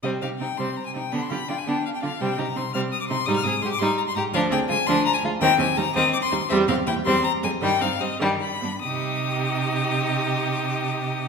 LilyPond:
<<
  \new Staff \with { instrumentName = "Violin" } { \time 3/4 \key c \minor \tempo 4 = 165 ees''8 f''8 g''8 c'''8 bes''16 aes''16 g''8 | b''16 c'''16 b''8 g''16 aes''16 g''8 f''16 g''16 f''8 | g''8 bes''8 c'''8 f'''8 ees'''16 d'''16 c'''8 | ees'''16 f'''16 ees'''8 c'''16 d'''16 c'''8 bes''16 c'''16 bes''8 |
f''8 g''8 aes''8 c'''8 bes''16 aes''8. | g''8 aes''8 bes''8 ees'''8 d'''16 c'''8. | e''8 f''8 g''8 c'''8 bes''8 aes''8 | g''8 f''8 ees''8 g''8 b''4 |
ees'''2.~ | ees'''2. | }
  \new Staff \with { instrumentName = "Violin" } { \time 3/4 \key c \minor c'8 g'8 ees'8 c'8 r8 ees'8 | d'8 g'8 f'8 d'8 r8 f'8 | c'8 g'8 ees'8 c'8 r8 ees'8 | ees'8 aes'8 g'8 ees'8 r8 g'8 |
d'8 aes'8 f'8 d'8 r8 f'8 | c'8 g'8 ees'8 c'8 r8 ees'8 | c'8 g'8 e'8 c'8 r8 c'8 | g8 ees'8 c'8 g8 r8 d'8 |
g'2.~ | g'2. | }
  \new Staff \with { instrumentName = "Viola" } { \clef bass \time 3/4 \key c \minor g8 ees'8 c'8 g8 r8 c'8 | b8 f'8 d'8 b8 r8 d'8 | g8 ees'8 c'8 g8 r8 c'8 | g8 c'8 aes8 g8 r8 aes8 |
f8 c'8 aes8 f8 r8 aes8 | ees8 c'8 g8 ees8 r8 g8 | g8 c'8 bes8 g8 r8 aes8 | ees8 c'8 g8 ees8 r8 b8 |
ees'2.~ | ees'2. | }
  \new Staff \with { instrumentName = "Cello" } { \clef bass \time 3/4 \key c \minor c8 c8 c8 c8 r8 c8 | d8 d8 d8 d8 r8 d8 | c8 c8 c8 c8 r8 c8 | aes,8 aes,8 aes,8 aes,8 r8 aes,8 |
d,8 d,8 d,8 d,8 r8 d,8 | ees,8 ees,8 ees,8 ees,8 r8 ees,8 | e,8 e,8 e,8 e,8 r8 f,8 | g,8 g,8 g,8 g,8 r8 g,8 |
c2.~ | c2. | }
>>